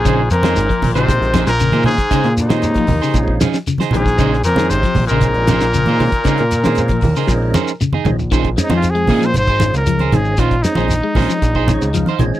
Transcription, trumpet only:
X:1
M:4/4
L:1/16
Q:1/4=116
K:Bbm
V:1 name="Trumpet"
A2 B4- B c4 B3 A2- | A2 E8 z4 A2- | A2 B2 c3 B8- B- | B12 z4 |
z2 E F A3 c c3 B3 A2 | F2 E12 z2 |]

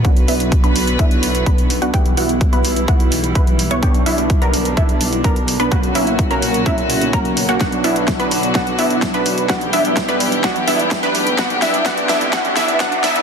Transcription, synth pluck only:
X:1
M:4/4
L:1/16
Q:1/4=127
K:Bm
V:1 name="Synth pluck"
f2 e3 b3 e4 b3 f | g2 f3 b3 f4 b3 c' | g2 e3 ^a3 e4 a3 b | f2 e3 ^a3 e4 a3 f |
f2 e3 b3 f2 e3 b3 | f2 e3 b3 f2 e3 b3 | f2 e2 f2 e2 f2 e2 f2 e2 |]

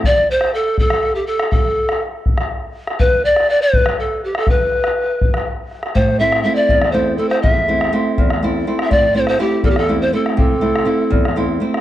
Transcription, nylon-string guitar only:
X:1
M:6/8
L:1/8
Q:3/8=81
K:Am
V:1 name="Nylon-string guitar"
z6 | z6 | z6 | z6 |
A,, [A,CE] [A,CE] E,, [A,CE] [A,CE] | E,, [A,CE] [A,CE] E,, [A,CE] [A,CE] | A,, [A,CE] [A,CE] E,, [A,CE] [A,CE] | C, [A,CE] [A,CE] E,, [A,CE] [A,CE] |]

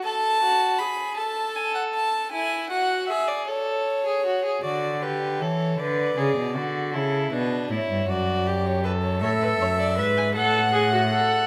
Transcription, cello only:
X:1
M:6/8
L:1/16
Q:3/8=52
K:D
V:1 name="Cello" clef=bass
z12 | z12 | D,4 E,2 D,2 C, B,, D,2 | C,2 B,,2 A,, G,, F,,6 |
A,,2 F,,2 ^G,,2 A,,6 |]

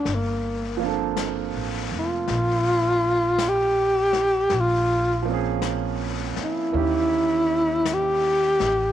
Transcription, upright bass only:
X:1
M:4/4
L:1/8
Q:"Swing" 1/4=54
K:Gdor
V:1 name="Upright bass" clef=bass
G,,,2- (3G,,, A,,, F,,, B,,,4 | B,,,3 z _E,,3 A,,, |]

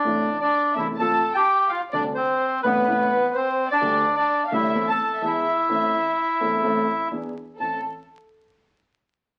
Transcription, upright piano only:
X:1
M:4/4
L:1/8
Q:1/4=128
K:Am
V:1 name="Upright piano" clef=bass
[A,,,A,,C,E,A,E] z2 [E,,,E,,C,E,A,E] [F,,C,F,A,F] z3 | [D,,C,D,G,A,D] z2 [A,,,A,,C,G,A,D] [A,,,A,,C,A,B,E] z3 | [D,,D,G,A,G] z2 [A,,,A,,D,G,A,G] [E,,E,A,CA] z [E,,E,^G,B,^G] z | [A,,,A,,E,A,CA] z2 [E,,,E,,E,A,CA] [A,,,A,,E,A,CA] z [E,,E,B,D^G] z |
[A,,,CEA] z6 z |]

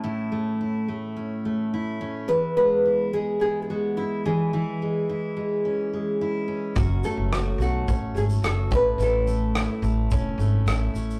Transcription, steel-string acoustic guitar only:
X:1
M:4/4
L:1/8
Q:1/4=107
K:Alyd
V:1 name="Steel-string acoustic guitar"
[A,,E] A, E A, C A, E C | [E,,E] G, E G, B, G, E E, | [E,E] G, E G, C G, E C | [F,,F] A, F A, C A, F A,, |
[A,,E] A, E A, C A, E C |]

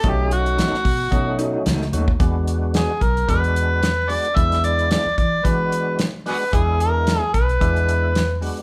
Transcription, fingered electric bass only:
X:1
M:4/4
L:1/16
Q:"Swing 16ths" 1/4=111
K:Emix
V:1 name="Fingered electric bass" clef=bass
B,,,4- B,,, z B,,2 B,,4 C,,2 ^D,,2 | E,,6 B,,,2 E,,8 | E,,4- E,, z E,2 E,8 | E,,6 B,,,2 E,,8 |]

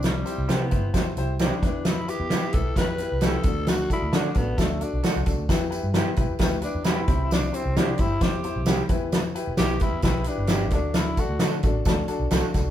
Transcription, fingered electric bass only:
X:1
M:4/4
L:1/16
Q:1/4=132
K:Em
V:1 name="Fingered electric bass" clef=bass
C,,3 C,, C,2 G,,,2 E,,2 C,,4 E,,2- | E,,3 E,, E,2 B,,,2 E,,3 C,,3 D,,2- | D,,3 D,, D,2 A,,,2 D,,3 B,,, z C,, C,, D,, | E,,3 G,,2 z B,, E,, D,,3 E,,3 C,,2- |
C,,3 C,, C,2 G,,,2 E,,3 C,,3 E,,2- | E,,3 E,,, B,,,3 E,, B,,,3 G,,,3 D,,2- | D,,3 D,, D,2 A,,,2 D,,2 z B,,, C,, z C,,2 |]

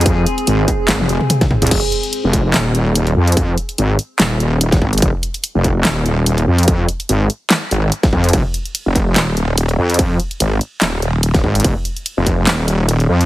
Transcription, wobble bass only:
X:1
M:4/4
L:1/16
Q:"Swing 16ths" 1/4=145
K:Fm
V:1 name="Wobble bass" clef=bass
F,,2 z2 A,,,2 z2 A,,, F,,,2 z4 C,, | F,,, z4 F,,,3 E,,,6 F,,2- | F,,2 z2 A,,,2 z2 E,,,6 A,,,2 | F,,, z4 F,,,3 E,,,6 F,,2- |
F,,2 z2 A,,,2 z4 A,,,2 z2 F,,2 | F,,, z4 F,,,3 E,,,6 F,,2- | F,,2 z2 A,,,2 z2 E,,,6 A,,,2 | F,,, z4 F,,,3 E,,,6 F,,2 |]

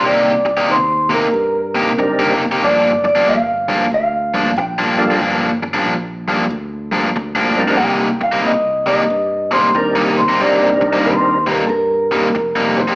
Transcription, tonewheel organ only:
X:1
M:4/4
L:1/8
Q:"Swing" 1/4=93
K:Cdor
V:1 name="Tonewheel organ"
z6 [G,CDEB] z | z6 z [G,B,DFA] | z6 z [G,CDEB] | z6 [G,CDEB] z |
[G,CDEB]3 z4 z |]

